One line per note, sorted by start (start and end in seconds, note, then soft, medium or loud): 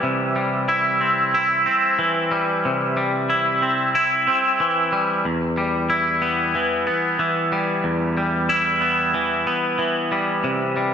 0.00 1.67 C3 medium
0.00 1.98 E3 medium
0.00 0.36 G3 medium
0.00 0.68 E4 medium
0.36 2.31 G3 medium
0.68 1.34 E4 medium
1.01 1.65 C4 medium
1.34 2.98 E4 medium
1.66 3.30 C4 medium
1.99 3.62 E3 medium
2.32 2.96 G3 medium
2.65 4.28 C3 medium
2.97 4.60 G3 medium
3.30 3.94 E4 medium
3.62 4.26 C4 medium
3.95 5.25 E4 medium
4.27 5.25 C4 medium
4.60 5.25 E3 medium
4.93 5.25 G3 medium
5.25 6.88 E2 medium
5.58 7.52 G3 medium
5.90 8.49 E4 medium
6.22 6.86 B3 medium
6.55 7.19 E3 medium
6.87 8.50 B3 medium
7.19 9.14 E3 medium
7.52 8.17 G3 medium
7.84 9.47 E2 medium
8.17 10.11 G3 medium
8.49 10.94 E4 medium
8.81 9.46 B3 medium
9.14 9.78 E3 medium
9.47 10.44 B3 medium
9.79 10.94 E3 medium
10.12 10.76 G3 medium
10.44 10.94 C3 medium
10.77 10.94 G3 medium